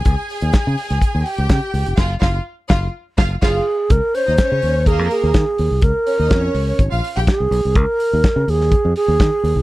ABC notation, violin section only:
X:1
M:4/4
L:1/16
Q:1/4=125
K:Dblyd
V:1 name="Violin section"
[Aa]8- [Aa]2 [Gg]6 | [Ff]2 [Ff]2 z2 [Ff]2 z2 [Ff]2 [Ff]2 z2 | z2 [Dd] [Ee] [Dd]4 [B,B]4 z4 | z2 [Dd] [Ee] [Dd]4 z [Ff] z [Gg] z4 |
z16 |]